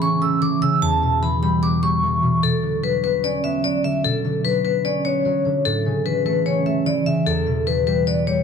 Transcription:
Already playing: harp C#3 E3 A3 B3
0.02 harp C#4, vibraphone C#6
0.22 harp A3, vibraphone E6
0.42 harp E3, vibraphone D6
0.62 harp C#3, vibraphone E6
0.82 harp E2, vibraphone A5
1.02 harp B2
1.22 harp E3, vibraphone B5
1.42 harp G3, vibraphone B5
1.63 harp B3, vibraphone D6
1.83 harp G3, vibraphone C#6
2.03 harp E3
2.23 harp B2
2.43 harp B2, vibraphone A4
2.63 harp D3
2.83 harp F#3, vibraphone B4
3.04 harp B3, vibraphone B4
3.24 harp C#4, vibraphone D5
3.44 harp B3, vibraphone E5
3.63 harp F#3, vibraphone D5
3.84 harp D3, vibraphone E5
4.04 harp B2, vibraphone A4
4.25 harp D3
4.45 harp F#3, vibraphone B4
4.65 harp B3, vibraphone B4
4.84 harp C#4, vibraphone D5
5.05 harp B3, vibraphone C#5
5.25 harp F#3
5.46 harp D3
5.65 harp A2, vibraphone A4
5.86 harp C#3
6.06 harp E3, vibraphone B4
6.26 harp A3, vibraphone B4
6.46 harp C#4, vibraphone C#5
6.66 harp A3, vibraphone E5
6.86 harp E3, vibraphone D5
7.06 harp C#3, vibraphone E5
7.26 harp E2, vibraphone A4
7.47 harp B2
7.66 harp E3, vibraphone B4
7.87 harp G3, vibraphone B4
8.07 harp B3, vibraphone D5
8.27 harp G3, vibraphone C#5

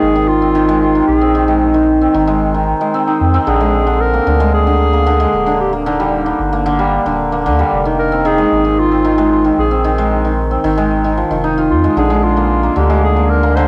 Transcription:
Already playing: hammered dulcimer D#3 G#3 A#3 C4, clarinet G#4
0.02 analog synth bass G#1
0.16 hammered dulcimer D#3
0.28 clarinet F4
0.42 hammered dulcimer C4
0.55 hammered dulcimer D#3
0.69 hammered dulcimer G#3
0.81 clarinet F4
0.95 hammered dulcimer D#3
1.07 analog synth bass A#1, clarinet G#4
1.21 hammered dulcimer C4
1.35 hammered dulcimer D#3
1.48 hammered dulcimer G#3
1.74 hammered dulcimer D#3
2.01 hammered dulcimer C4
2.14 analog synth bass G#1, hammered dulcimer D#3
2.27 hammered dulcimer G#3
2.54 hammered dulcimer D#3
2.81 hammered dulcimer G#3
2.94 hammered dulcimer C4
3.08 hammered dulcimer D#4
3.21 analog synth bass F2
3.34 hammered dulcimer C4
3.47 analog synth bass A#1, hammered dulcimer D3, clarinet G#4
3.61 hammered dulcimer G#3
3.87 hammered dulcimer D3
4.00 clarinet A#4
4.14 hammered dulcimer A#3
4.27 analog synth bass D2, hammered dulcimer D3
4.40 hammered dulcimer G#3
4.54 clarinet G#4
4.67 hammered dulcimer D3
4.93 hammered dulcimer A#3
5.07 hammered dulcimer D3
5.20 hammered dulcimer G#3
5.34 analog synth bass D#1
5.46 hammered dulcimer D3
5.60 clarinet G4
5.73 hammered dulcimer A#3
5.86 hammered dulcimer D3, clarinet D#4
6.00 hammered dulcimer G3
6.26 hammered dulcimer D3
6.39 analog synth bass G1
6.52 hammered dulcimer A#3
6.66 hammered dulcimer D3
6.79 hammered dulcimer G3
7.06 analog synth bass D#1, hammered dulcimer D3
7.32 hammered dulcimer A#3
7.46 analog synth bass D#2, hammered dulcimer D3
7.59 hammered dulcimer G3
7.72 analog synth bass F1
7.85 hammered dulcimer D#3
7.99 clarinet A#4
8.12 hammered dulcimer C4
8.25 hammered dulcimer D#3, clarinet G#4
8.38 hammered dulcimer G#3
8.52 analog synth bass G#1
8.65 hammered dulcimer D#3
8.79 clarinet F4
8.91 hammered dulcimer C4
9.05 hammered dulcimer D#3
9.18 hammered dulcimer G#3
9.32 clarinet F4
9.45 hammered dulcimer D#3
9.58 analog synth bass A#1, clarinet G#4
9.71 hammered dulcimer C4
9.84 hammered dulcimer D#3
9.98 hammered dulcimer G#3
10.25 hammered dulcimer D#3
10.51 hammered dulcimer C4
10.64 analog synth bass G#1, hammered dulcimer D#3
10.77 hammered dulcimer G#3
11.04 hammered dulcimer D#3
11.17 hammered dulcimer F3
11.31 analog synth bass F1, hammered dulcimer D#3
11.44 hammered dulcimer D#4
11.58 hammered dulcimer F4
11.70 analog synth bass F2, clarinet F4
11.84 hammered dulcimer G#3
11.97 analog synth bass A#1, hammered dulcimer D3, clarinet G#4
12.10 hammered dulcimer G#3
12.24 clarinet F4
12.37 hammered dulcimer A#3
12.63 hammered dulcimer A#3
12.76 analog synth bass D2, hammered dulcimer D3, clarinet G4
12.90 hammered dulcimer G#3
13.03 clarinet G#4
13.16 hammered dulcimer A#3
13.29 clarinet A#4
13.43 hammered dulcimer A#3
13.56 hammered dulcimer D3, clarinet C5

